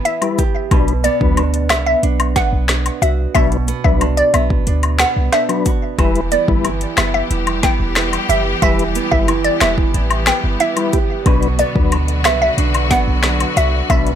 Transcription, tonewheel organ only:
0.22 G3 E4 B4
0.71 F#3 D4 B4
1.21 F#3 D4 B4
3.35 F#3 D4 B4
3.85 F#3 D4 B4
5.49 F#3 D4 B4
5.98 G3 E4 B4
6.48 G3 E4 B4
8.62 G3 E4 B4
9.11 G3 E4 B4
10.76 G3 E4 B4
11.26 F#3 D4 B4
11.75 F#3 D4 B4
13.90 F#3 D4 B4

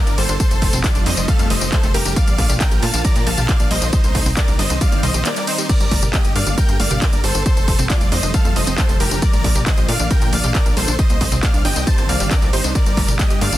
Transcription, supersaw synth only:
Already playing: A#4 D5
0.18 A4 C5
0.40 A4 C5
0.84 F4 D5
1.06 C5 D#5
1.28 A4 F5
1.50 C5 D#5
1.72 A4 C5
1.94 G4 A#4
2.16 D5 F5
2.61 A#4 G5
2.83 F5 A5
3.05 D5 A#5
3.27 F5 A5
3.49 D5 F5
3.71 C5 D#5
3.93 D#4 C5
4.37 A#4 D5
4.59 C5 D#5
4.81 D5 F5
5.03 C5 D#5
5.25 A#4 D5
5.47 D#4 C5
5.70 A#4 D5
6.14 G4 D#5
6.36 D5 F5
6.58 A#4 G5
6.80 D5 F5
7.02 A#4 D5
7.24 A4 C5
7.46 A4 C5
7.90 F4 D5
8.12 C5 D#5
8.34 A4 F5
8.56 C5 D#5
8.78 A4 C5
9.00 G4 A#4
9.22 A#4 D5
9.67 C5 D#5
9.89 D5 F5
10.11 A#4 G5
10.33 D5 F5
10.55 A#4 D5
10.77 A4 C5
10.99 C5 D#5
11.43 D5 F5
11.65 D#5 G5
11.87 C5 A5
12.09 D5 F5
12.31 A#4 D5
12.53 D#4 C5
12.75 A#4 D5
13.19 G4 D#5
13.41 D5 F5

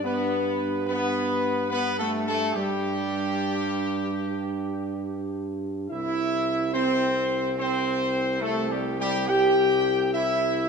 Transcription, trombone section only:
0.04 B3
0.88 B3
1.72 B3
1.99 A3
2.27 A3
2.55 G3
5.91 E4
6.75 C4
7.59 C4
8.41 A3
8.69 G3
9.00 G3
9.29 G4
10.14 E4

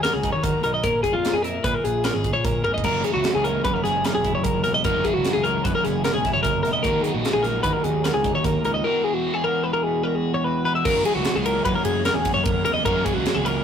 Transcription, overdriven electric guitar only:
2.84 F#2 C#3 E3 A#3 E4
4.85 F#2 C#3 E3 A#3 E4
6.84 D#3 F#3 A#3 D#4
8.84 E3 G#3 B3 E4
10.84 F#2 C#3 E3 A#3 E4 F#4
12.85 F#2 C#3 E3 A#3 E4 F#4

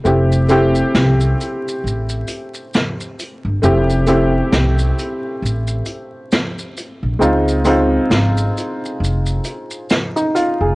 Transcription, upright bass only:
0.05 F1
0.94 C2
1.84 A1
3.45 G1
3.63 F1
4.53 C2
5.42 A1
7.03 A#1
7.21 C#2
8.10 G#1
9.00 F1
10.61 F1

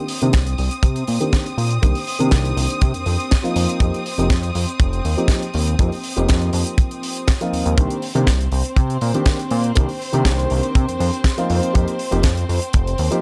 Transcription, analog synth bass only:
0.22 C3
0.34 C2
0.59 C2
0.83 C3
1.08 A#2
1.58 A#2
1.83 C2
2.20 C3
2.32 C2
2.57 C2
2.82 C3
2.95 F2
3.06 F2
3.56 F2
3.80 F2
4.18 F1
4.30 F2
4.55 F2
4.80 F1
5.05 D#2
5.54 D#2
5.79 F2
6.17 F1
6.30 F2
6.53 F2
7.53 D#2
7.66 D#2
7.78 C2
8.15 C3
8.27 C2
8.52 C2
8.77 C3
9.02 A#2
9.51 A#2
9.77 C2
10.14 C3
10.25 C2
10.51 C2
10.75 C3
10.89 F2
11.00 F2
11.50 F2
11.75 F2
12.12 F1
12.24 F2
12.49 F2
12.74 F1
12.99 D#2

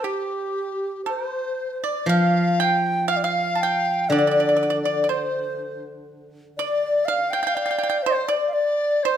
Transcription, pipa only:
0.04 G4
1.06 A4
1.29 C5
1.84 D5
2.09 F5
2.60 G5
3.08 F5
3.24 F5
3.55 A5
3.63 G5
4.12 D5
4.18 D5
4.27 D5
4.31 D5
4.40 D5
4.49 D5
4.56 D5
4.63 D5
4.70 D5
4.85 D5
5.04 D5
5.09 C5
6.59 D5
7.08 F5
7.33 G5
7.43 G5
7.47 G5
7.57 G5
7.66 G5
7.71 G5
7.78 G5
7.83 G5
7.90 G5
8.06 C5
8.28 D5
9.05 C5

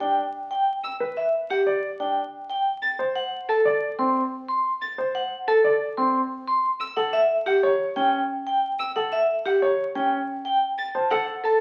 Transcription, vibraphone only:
0.00 G5
0.51 G5
1.17 E5
1.51 G4
2.00 G5
2.50 G5
3.16 F#5
3.49 A4
3.99 C6
4.48 C6
5.15 F#5
5.48 A4
5.97 C6
6.48 C6
6.96 F#5
7.13 E5
7.46 G4
7.96 G5
8.47 G5
8.96 F#5
9.12 E5
9.45 G4
9.95 G5
10.45 G5
10.95 A5
11.11 F#5
11.44 A4

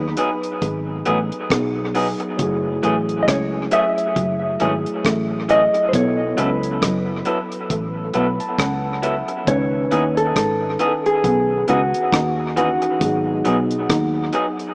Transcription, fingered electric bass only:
Already playing: D#2
0.62 G#1
1.08 A1
1.51 B1
2.40 F#1
2.85 A1
3.29 C#2
4.17 F#1
4.62 G#1
5.05 A1
5.94 B1
6.38 C#2
6.83 F#1
7.71 A1
8.15 B1
8.59 C#2
9.48 C#2
9.93 D#2
10.36 G#1
11.25 B1
11.69 C#2
12.13 D#2
13.02 G#1
13.46 B1
13.90 D#2

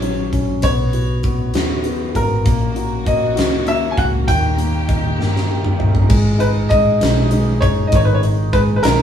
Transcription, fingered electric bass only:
Already playing: A#1
0.33 A#1
0.63 B1
1.55 D#2
2.15 G#1
2.46 A#1
3.37 C#2
3.98 C#2
4.28 D#2
5.19 G2
5.81 G1
6.10 G#1
7.01 B1
7.62 F#1
7.93 G#1
8.83 B1

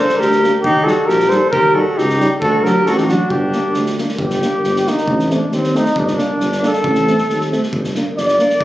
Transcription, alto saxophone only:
Already playing: A4
0.20 G4
0.65 D#4
0.86 F#4
1.08 G4
1.31 A4
1.53 G4
1.75 F#4
1.98 D#4
2.43 F#4
2.65 G4
2.87 F#4
2.99 D#4
3.11 D4
3.32 D4

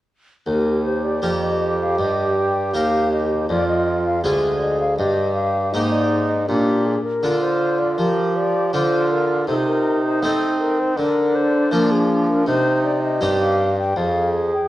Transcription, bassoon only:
0.47 D#2
1.23 F2
1.99 G2
2.75 D#2
3.49 F2
4.24 D2
4.99 G2
5.74 G#2
6.48 A#2
7.23 D3
7.99 F3
8.73 D3
9.48 C3
10.23 C4
10.98 D3
11.72 F3
12.47 C3
13.22 G2
13.96 F2

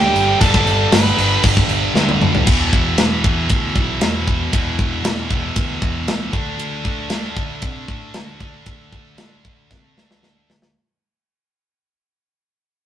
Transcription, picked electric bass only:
0.14 G1
0.40 G1
0.66 G1
0.92 G1
1.17 G1
1.44 G1
1.68 G1
1.94 D2
2.20 D2
2.47 E1
2.73 E1
2.98 E1
3.24 E2
3.49 D2
3.75 B1
4.00 E1
4.53 E1
4.79 E1
5.03 E1
5.56 D2
5.82 E1
6.07 C#2
6.33 D2
6.58 D2
6.85 D2
7.10 D2
7.37 D3
7.62 C3
7.88 A2
8.15 D2
8.66 D2
8.92 D2
9.19 D2
9.71 C3
9.97 D2
10.23 D2
10.48 D2

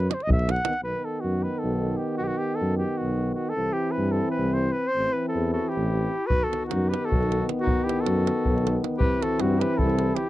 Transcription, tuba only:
0.27 B1
0.82 B1
1.24 F#2
1.64 B1
2.20 B1
2.61 F#2
3.02 B1
3.57 C2
3.98 G2
4.38 C2
4.95 A1
5.35 E2
5.76 A1
6.31 B1
6.72 F#2
7.12 B1
7.66 B1
8.07 F#2
8.47 B1
9.01 C2
9.40 G2
9.81 C2

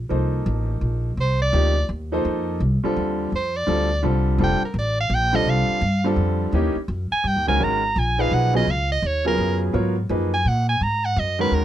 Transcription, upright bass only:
0.10 C2
0.46 A1
0.81 A#1
1.17 C2
1.53 D2
1.89 D#2
2.25 F2
2.60 C2
2.84 muted upright bass stroke
2.97 D#2
3.32 F2
3.67 D2
4.03 C2
4.38 F1
4.74 A1
5.10 A#1
5.46 C2
5.69 muted upright bass stroke
5.81 G2
6.16 F2
6.52 D#2
6.76 muted upright bass stroke
6.88 F#2
7.11 muted upright bass stroke
7.24 G2
7.36 D#2
7.48 C#2
7.61 G#1
7.96 A#1
8.31 B1
8.67 C#2
9.02 D#2
9.38 F#2
9.74 G#2
10.09 F#2
10.45 A#2
10.81 G#2
11.16 F#2
11.51 D#2

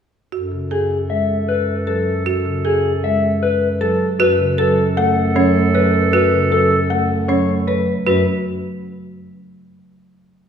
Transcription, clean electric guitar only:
0.71 G#4
1.10 E5
1.49 B4
1.87 A4
2.65 G#4
3.04 E5
3.43 B4
3.81 A4
4.20 B4
4.59 A4
4.97 F#5
5.36 C#5
5.75 B4
6.13 B4
6.52 A4
6.90 F#5
7.28 C#5
7.67 B4
8.06 B4

